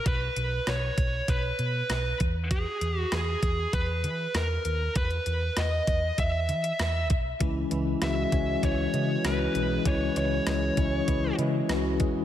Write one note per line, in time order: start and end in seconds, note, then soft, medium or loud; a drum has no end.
0.06 0.28 B1 medium
0.06 0.70 B4 medium
0.06 kick loud
0.06 closed hi-hat medium
0.36 0.58 B1 medium
0.36 closed hi-hat medium
0.67 0.89 B1 medium
0.67 1.31 C#5 medium
0.67 cross-stick loud
0.67 closed hi-hat medium
0.98 1.20 B1 medium
0.98 kick medium
0.98 closed hi-hat medium
1.28 1.50 B1 medium
1.28 2.17 B4 medium
1.28 kick medium
1.28 closed hi-hat medium
1.59 1.81 B2 medium
1.59 closed hi-hat medium
1.90 2.12 B1 medium
1.90 cross-stick loud
1.90 closed hi-hat medium
2.20 2.64 E2 medium
2.20 kick medium
2.20 closed hi-hat medium
2.51 2.99 G#4 medium
2.51 kick loud
2.51 closed hi-hat medium
2.81 3.03 E2 medium
2.81 closed hi-hat medium
2.99 3.12 F#4 medium
3.12 3.34 E2 medium
3.12 3.74 G#4 medium
3.12 cross-stick loud
3.12 closed hi-hat medium
3.43 3.65 E2 medium
3.43 kick medium
3.43 closed hi-hat medium
3.73 4.05 E2 loud
3.73 4.35 B4 medium
3.73 kick medium
3.73 closed hi-hat medium
4.04 4.26 E3 medium
4.04 closed hi-hat medium
4.34 4.56 E2 medium
4.34 4.92 A#4 medium
4.34 cross-stick loud
4.34 closed hi-hat medium
4.65 4.87 D#2 medium
4.65 closed hi-hat medium
4.96 5.18 E2 medium
4.96 5.59 B4 medium
4.96 kick loud
4.96 closed hi-hat medium
5.11 closed hi-hat soft
5.26 5.48 E2 medium
5.26 closed hi-hat medium
5.57 5.79 E2 medium
5.57 6.19 D#5 medium
5.57 cross-stick loud
5.57 closed hi-hat medium
5.87 6.10 E2 medium
5.87 kick medium
5.87 closed hi-hat medium
6.18 6.50 E2 loud
6.18 7.07 E5 medium
6.18 kick medium
6.18 closed hi-hat medium
6.49 6.71 E3 medium
6.49 closed hi-hat medium
6.64 closed hi-hat medium
6.79 7.10 E2 medium
6.79 cross-stick loud
6.79 closed hi-hat medium
7.10 7.32 B1 medium
7.10 kick medium
7.10 closed hi-hat medium
7.40 7.63 C#2 medium
7.40 7.65 E3 medium
7.40 7.71 E3 medium
7.40 7.65 G#3 medium
7.40 7.65 C#4 medium
7.40 7.66 E4 loud
7.40 kick loud
7.40 closed hi-hat medium
7.70 7.93 C#2 medium
7.70 7.96 E3 medium
7.70 8.63 E3 medium
7.70 7.96 G#3 medium
7.70 7.96 C#4 medium
7.70 7.96 E4 medium
7.70 closed hi-hat medium
8.01 8.24 C#2 medium
8.01 8.26 E3 medium
8.01 8.26 G#3 medium
8.01 8.93 G#3 medium
8.01 8.27 C#4 medium
8.01 8.27 F#4 loud
8.01 8.64 E5 loud
8.01 cross-stick loud
8.01 closed hi-hat medium
8.32 8.54 C#2 medium
8.32 8.57 E3 medium
8.32 8.57 G#3 medium
8.32 8.57 C#4 medium
8.32 10.77 C#4 medium
8.32 8.57 F#4 medium
8.32 kick medium
8.32 closed hi-hat medium
8.62 8.85 C#2 loud
8.62 8.88 E3 medium
8.62 9.24 E3 medium
8.62 8.88 G#3 medium
8.62 8.88 C#4 medium
8.62 8.88 E4 medium
8.62 9.27 C#5 medium
8.62 kick medium
8.62 closed hi-hat medium
8.93 9.16 C#3 medium
8.93 9.18 E3 medium
8.93 9.18 G#3 medium
8.93 9.54 G#3 medium
8.93 9.19 C#4 medium
8.93 9.19 F#4 medium
8.93 closed hi-hat medium
9.24 9.46 C#2 medium
9.24 9.49 E3 medium
9.24 9.85 E3 medium
9.24 9.49 G#3 medium
9.24 9.49 C#4 medium
9.24 9.49 F#4 medium
9.24 9.88 B4 medium
9.24 cross-stick loud
9.24 closed hi-hat medium
9.54 9.77 B1 medium
9.54 9.79 E3 medium
9.54 9.79 G#3 medium
9.54 10.46 G#3 medium
9.54 9.80 C#4 medium
9.54 9.80 E4 medium
9.54 closed hi-hat medium
9.85 10.08 C#2 medium
9.85 10.10 E3 medium
9.85 10.16 E3 medium
9.85 10.10 G#3 medium
9.85 10.10 C#4 medium
9.85 10.11 E4 medium
9.85 10.16 C#5 medium
9.85 kick loud
9.85 closed hi-hat medium
10.15 10.38 C#2 medium
10.15 10.41 E3 medium
10.15 11.08 E3 medium
10.15 10.41 G#3 medium
10.15 10.41 C#4 medium
10.15 10.41 E4 medium
10.15 11.35 C#5 medium
10.15 closed hi-hat medium
10.46 10.69 C#2 medium
10.46 10.71 E3 medium
10.46 10.71 G#3 medium
10.46 11.37 G#3 medium
10.46 10.72 C#4 medium
10.46 10.72 E4 loud
10.46 cross-stick loud
10.46 closed hi-hat medium
10.77 10.99 C#2 medium
10.77 11.02 E3 medium
10.77 11.02 G#3 medium
10.77 12.25 C#4 medium
10.77 11.02 C#4 medium
10.77 11.02 E4 medium
10.77 kick medium
10.77 closed hi-hat medium
11.07 11.30 C#2 medium
11.07 11.32 E3 medium
11.07 11.69 E3 medium
11.07 11.33 G#3 medium
11.07 11.33 C#4 medium
11.07 11.33 E4 medium
11.07 kick medium
11.07 closed hi-hat medium
11.38 11.61 C#3 medium
11.38 11.63 E3 medium
11.38 11.63 G#3 medium
11.38 11.99 G#3 medium
11.38 11.63 C#4 medium
11.38 11.64 E4 medium
11.38 closed hi-hat medium
11.69 12.00 C#2 medium
11.69 11.94 E3 loud
11.69 12.25 E3 medium
11.69 11.94 G#3 medium
11.69 11.94 C#4 medium
11.69 11.94 F#4 loud
11.69 cross-stick loud
11.69 closed hi-hat medium
11.99 12.25 E1 medium
11.99 12.24 E3 medium
11.99 12.24 G#3 medium
11.99 12.25 G#3 medium
11.99 12.25 C#4 medium
11.99 12.25 E4 medium
11.99 kick medium
11.99 closed hi-hat medium